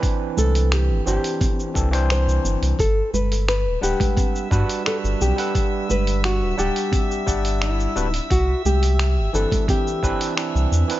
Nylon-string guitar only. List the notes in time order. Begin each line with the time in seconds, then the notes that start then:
Already playing: B4
0.38 A4
0.73 G4
1.08 G4
2.12 C5
2.80 A4
3.14 B4
3.48 B4
3.83 G4
4.52 F#4
4.87 A4
5.22 G4
5.91 B4
6.25 F#4
6.59 G4
7.62 E4
8.15 D4
8.31 F#4
8.66 G4
9.35 A4
9.70 G4